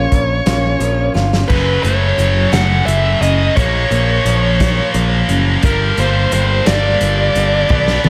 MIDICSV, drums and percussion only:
0, 0, Header, 1, 2, 480
1, 0, Start_track
1, 0, Tempo, 689655
1, 1041, Time_signature, 6, 3, 24, 8
1, 5631, End_track
2, 0, Start_track
2, 0, Title_t, "Drums"
2, 82, Note_on_c, 9, 42, 55
2, 83, Note_on_c, 9, 36, 70
2, 152, Note_off_c, 9, 36, 0
2, 152, Note_off_c, 9, 42, 0
2, 321, Note_on_c, 9, 42, 70
2, 326, Note_on_c, 9, 38, 99
2, 391, Note_off_c, 9, 42, 0
2, 396, Note_off_c, 9, 38, 0
2, 560, Note_on_c, 9, 42, 59
2, 629, Note_off_c, 9, 42, 0
2, 807, Note_on_c, 9, 38, 48
2, 876, Note_off_c, 9, 38, 0
2, 927, Note_on_c, 9, 38, 66
2, 997, Note_off_c, 9, 38, 0
2, 1042, Note_on_c, 9, 36, 97
2, 1042, Note_on_c, 9, 49, 81
2, 1111, Note_off_c, 9, 49, 0
2, 1112, Note_off_c, 9, 36, 0
2, 1284, Note_on_c, 9, 42, 58
2, 1354, Note_off_c, 9, 42, 0
2, 1522, Note_on_c, 9, 42, 61
2, 1592, Note_off_c, 9, 42, 0
2, 1761, Note_on_c, 9, 42, 72
2, 1765, Note_on_c, 9, 38, 98
2, 1830, Note_off_c, 9, 42, 0
2, 1835, Note_off_c, 9, 38, 0
2, 2006, Note_on_c, 9, 42, 61
2, 2075, Note_off_c, 9, 42, 0
2, 2245, Note_on_c, 9, 42, 52
2, 2315, Note_off_c, 9, 42, 0
2, 2484, Note_on_c, 9, 36, 96
2, 2485, Note_on_c, 9, 42, 62
2, 2553, Note_off_c, 9, 36, 0
2, 2555, Note_off_c, 9, 42, 0
2, 2725, Note_on_c, 9, 42, 53
2, 2795, Note_off_c, 9, 42, 0
2, 2963, Note_on_c, 9, 42, 60
2, 3033, Note_off_c, 9, 42, 0
2, 3202, Note_on_c, 9, 36, 73
2, 3203, Note_on_c, 9, 42, 77
2, 3208, Note_on_c, 9, 38, 97
2, 3272, Note_off_c, 9, 36, 0
2, 3272, Note_off_c, 9, 42, 0
2, 3277, Note_off_c, 9, 38, 0
2, 3440, Note_on_c, 9, 42, 59
2, 3509, Note_off_c, 9, 42, 0
2, 3681, Note_on_c, 9, 42, 54
2, 3751, Note_off_c, 9, 42, 0
2, 3916, Note_on_c, 9, 42, 71
2, 3920, Note_on_c, 9, 36, 93
2, 3986, Note_off_c, 9, 42, 0
2, 3990, Note_off_c, 9, 36, 0
2, 4159, Note_on_c, 9, 42, 53
2, 4228, Note_off_c, 9, 42, 0
2, 4399, Note_on_c, 9, 42, 63
2, 4469, Note_off_c, 9, 42, 0
2, 4638, Note_on_c, 9, 42, 81
2, 4643, Note_on_c, 9, 38, 101
2, 4707, Note_off_c, 9, 42, 0
2, 4712, Note_off_c, 9, 38, 0
2, 4877, Note_on_c, 9, 42, 62
2, 4946, Note_off_c, 9, 42, 0
2, 5119, Note_on_c, 9, 42, 59
2, 5188, Note_off_c, 9, 42, 0
2, 5357, Note_on_c, 9, 48, 49
2, 5359, Note_on_c, 9, 36, 103
2, 5427, Note_off_c, 9, 48, 0
2, 5428, Note_off_c, 9, 36, 0
2, 5482, Note_on_c, 9, 38, 56
2, 5551, Note_off_c, 9, 38, 0
2, 5598, Note_on_c, 9, 48, 65
2, 5631, Note_off_c, 9, 48, 0
2, 5631, End_track
0, 0, End_of_file